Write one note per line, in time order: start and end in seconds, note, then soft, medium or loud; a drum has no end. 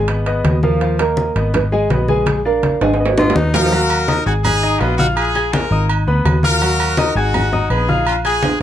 0.00 0.41 G#1 loud
0.00 0.60 G#4 medium
0.08 0.23 B3 medium
0.08 0.24 B4 medium
0.08 0.24 D#5 medium
0.08 high conga soft
0.08 high timbale medium
0.26 0.57 B3 medium
0.26 0.57 B4 medium
0.26 0.57 D#5 medium
0.26 high conga soft
0.26 high timbale medium
0.44 1.30 D#2 medium
0.44 high conga medium
0.44 high timbale medium
0.44 low timbale medium
0.63 0.78 F3 medium
0.63 0.78 F4 medium
0.63 0.99 A#4 medium
0.63 0.79 F5 medium
0.63 high conga medium
0.81 0.96 F3 medium
0.81 0.97 F4 medium
0.81 0.97 F5 medium
0.81 high conga soft
0.81 high timbale medium
0.99 1.29 A#3 medium
0.99 1.30 A#4 medium
0.99 1.55 A#4 loud
0.99 1.30 D#5 medium
0.99 high conga soft
0.99 high timbale loud
1.17 high conga medium
1.17 low timbale medium
1.36 1.87 G#1 loud
1.36 1.66 B3 medium
1.36 1.66 B4 medium
1.36 1.66 D#5 medium
1.36 high conga soft
1.36 high timbale medium
1.54 1.61 B4 medium
1.54 high conga soft
1.54 low conga medium
1.54 high timbale medium
1.72 1.87 G#3 medium
1.72 1.87 G#4 medium
1.72 2.07 D#5 loud
1.72 1.88 G#5 medium
1.72 high conga soft
1.90 2.75 A#1 medium
1.90 2.05 B3 medium
1.90 2.05 B4 medium
1.90 2.06 D#5 medium
1.90 high conga medium
1.90 high timbale medium
1.90 low timbale medium
2.08 2.39 G#3 medium
2.08 2.39 G#4 medium
2.08 2.28 B4 medium
2.08 2.39 G#5 medium
2.08 high conga medium
2.26 2.33 G#4 medium
2.26 high conga medium
2.26 high timbale medium
2.45 2.75 D4 medium
2.45 2.83 A#4 medium
2.45 2.75 D5 medium
2.45 2.75 F5 medium
2.63 high conga medium
2.63 high timbale medium
2.63 low timbale medium
2.81 3.32 G#1 medium
2.81 2.97 G#3 medium
2.81 2.97 G#4 medium
2.81 3.51 D#5 medium
2.81 2.97 G#5 medium
2.81 high timbale medium
2.94 high timbale medium
3.00 3.15 B3 medium
3.00 3.15 B4 medium
3.00 3.15 D#5 medium
3.06 low timbale loud
3.18 3.48 B3 medium
3.18 3.37 F4 loud
3.18 3.48 B4 medium
3.18 3.48 D#5 medium
3.18 low conga loud
3.18 high timbale medium
3.30 low timbale loud
3.36 4.21 D#2 medium
3.36 3.72 D#4 medium
3.36 low conga loud
3.54 3.69 F3 medium
3.54 3.69 F4 medium
3.54 4.23 F#4 medium
3.54 4.23 A#4 loud
3.54 3.69 F5 medium
3.54 low conga medium
3.54 low timbale medium
3.66 low timbale medium
3.72 4.02 F#3 medium
3.72 4.02 F#4 medium
3.72 4.02 F5 medium
3.72 high conga soft
3.72 low agogo loud
3.90 high conga soft
3.90 low agogo loud
4.08 4.23 D#4 medium
4.08 4.23 D#5 medium
4.08 4.24 D#6 medium
4.08 high conga loud
4.08 low agogo medium
4.26 4.77 G#1 loud
4.26 4.36 D#4 medium
4.26 4.35 F#4 medium
4.26 4.56 G#4 medium
4.26 4.56 G#5 medium
4.26 4.57 G#6 medium
4.26 high conga soft
4.44 4.79 D#4 medium
4.44 4.78 G#4 loud
4.44 high conga soft
4.44 low conga medium
4.44 low agogo loud
4.63 4.78 D#4 medium
4.63 4.78 D#5 medium
4.63 4.78 D#6 medium
4.63 high conga soft
4.80 5.66 A#1 medium
4.80 4.96 B3 medium
4.80 4.99 B3 medium
4.80 4.98 F4 medium
4.80 4.96 B4 medium
4.80 4.96 B5 medium
4.80 high conga soft
4.80 low timbale medium
4.80 low agogo medium
4.98 5.08 D#4 medium
4.98 5.29 F4 medium
4.98 5.07 F#4 medium
4.98 5.29 F5 medium
4.98 5.29 F6 medium
4.98 high conga medium
5.17 5.52 F4 medium
5.17 5.51 G#4 loud
5.17 high conga soft
5.17 low agogo loud
5.35 5.65 G#4 medium
5.35 5.65 G#5 medium
5.35 5.66 G#6 medium
5.35 high conga soft
5.35 low agogo medium
5.53 5.90 F4 medium
5.53 5.90 A#4 medium
5.53 high conga loud
5.53 low agogo medium
5.71 6.05 G#1 loud
5.71 6.01 D#4 medium
5.71 6.01 D#5 medium
5.71 6.02 D#6 medium
5.71 high conga soft
5.89 high conga soft
5.89 low agogo loud
6.07 6.24 D2 medium
6.07 6.37 B3 medium
6.07 6.37 B4 medium
6.07 6.38 B5 medium
6.07 high conga soft
6.25 7.10 D#2 loud
6.25 high conga medium
6.25 low timbale medium
6.25 low agogo loud
6.43 6.59 F4 loud
6.43 7.13 F#4 medium
6.43 7.13 A#4 loud
6.43 6.59 F5 medium
6.43 6.59 F6 medium
6.43 high conga medium
6.61 6.91 F#3 medium
6.61 6.92 F#4 medium
6.61 6.92 F5 medium
6.61 high conga soft
6.61 low agogo loud
6.79 high conga soft
6.79 low agogo loud
6.97 7.13 D#4 medium
6.97 7.13 D#5 medium
6.97 7.13 D#6 medium
6.97 high conga loud
6.97 low agogo medium
7.15 7.66 G#1 loud
7.15 7.67 D#4 medium
7.15 7.67 F#4 loud
7.15 7.46 G#4 medium
7.15 7.46 G#5 medium
7.15 7.46 G#6 medium
7.15 high conga soft
7.34 high conga soft
7.34 low conga medium
7.34 low agogo loud
7.52 7.67 D#4 medium
7.52 7.68 D#5 medium
7.52 7.68 D#6 medium
7.52 high conga soft
7.52 low conga medium
7.70 8.55 A#1 medium
7.70 7.85 B3 medium
7.70 8.07 D#4 medium
7.70 8.07 G#4 medium
7.70 7.85 B4 medium
7.70 7.86 B5 medium
7.70 high conga soft
7.70 low agogo medium
7.89 8.18 F4 medium
7.89 8.18 F5 medium
7.89 8.19 F6 medium
7.89 high conga medium
8.06 8.16 D4 medium
8.06 8.15 F4 medium
8.06 high conga soft
8.06 low agogo loud
8.24 8.59 F4 medium
8.24 8.54 G#4 medium
8.24 8.59 G#4 loud
8.24 8.55 G#5 medium
8.24 8.55 G#6 medium
8.24 high conga soft
8.24 low agogo medium
8.43 high conga loud
8.43 high timbale medium
8.43 low agogo medium